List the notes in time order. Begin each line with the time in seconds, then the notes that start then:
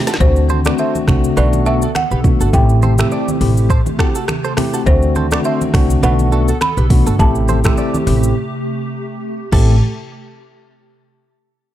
Already playing: C3 A3 G4
0.07 F#4 A4, snare, shaker
0.14 snare
0.20 D2 D3 A3 C4 D4 F#4 C5, kick, low conga, shaker
0.36 shaker
0.49 A4 C5, high conga, shaker
0.65 A3 C4 D4 F#4 B4 D5, finger snap, cross-stick, high conga, shaker
0.78 A4 C5 E5, shaker
0.95 high conga, shaker
1.07 C2 A3 C4 D4 F#4, finger snap, kick, cross-stick, high conga, low conga, shaker
1.24 shaker
1.37 B1 A3 B3 D4 F#4 A4 B4 D5, shaker
1.53 high conga, shaker
1.66 A3 B3 D4 F#4 A4 E5, shaker
1.82 F#4 A4, shaker
1.95 F#5, finger snap, cross-stick, high conga, shaker
2.11 B1 G4 B4, shaker
2.24 A3 B3 D4 F#4, kick, high conga, low conga, shaker
2.40 G1 F#4 A4, shaker
2.53 A1 C3 A3 C4 E4 G4 G5, kick, low conga, shaker
2.69 shaker
2.82 A4 C5, high conga, shaker
2.98 A3 C4 E4 G4 C5 E5, finger snap, cross-stick, high conga, shaker
3.11 A4 D5, shaker
3.28 high conga, shaker
3.41 A1 A3 C4 E4 G4, open hi-hat, high conga, low conga, shaker
3.57 shaker
3.70 A4 C5, kick, shaker
3.86 high conga, shaker
3.99 A3 C4 E4 F#4 G4 A4, finger snap, kick, cross-stick, shaker
4.15 F#4 A4, shaker
4.28 finger snap, cross-stick, high conga, shaker
4.44 A4 C5, shaker
4.57 A3 C4 E4 G4, finger snap, cross-stick, open hi-hat, high conga, low conga, shaker
4.74 F#4 A4, shaker
4.86 D2 D3 A3 C4 D4 F#4 C5, kick, low conga, shaker
5.02 shaker
5.15 A4 C5, high conga, shaker
5.31 A3 C4 D4 F#4 B4 D5, finger snap, cross-stick, high conga, shaker
5.44 A4 C5 E5, shaker
5.61 high conga, shaker
5.74 C2 A3 C4 D4 F#4, finger snap, kick, cross-stick, open hi-hat, high conga, low conga, shaker
5.90 shaker
6.03 B1 A3 B3 D4 F#4 A4 B4 F#5, shaker
6.19 high conga, shaker
6.32 A3 B3 D4 F#4 A4, shaker
6.48 F#4 A4, shaker
6.61 B5, finger snap, cross-stick, high conga, shaker
6.77 B1 G4 B4, shaker
6.90 A3 B3 D4 F#4, kick, open hi-hat, high conga, low conga, shaker
7.06 G1 F#4 A4, shaker
7.19 A1 C3 A3 C4 E4 G4 A5, kick, low conga, shaker
7.35 shaker
7.48 A4 C5, high conga, shaker
7.64 A3 C4 E4 G4 C5 E5, finger snap, kick, cross-stick, high conga, shaker
7.77 A4 D5, shaker
7.94 high conga, shaker
8.06 A1 A3 C4 E4 G4, open hi-hat, high conga, low conga, shaker
8.23 shaker
9.52 A1 C3 A3 C4 E4 G4 A4, kick, crash, high conga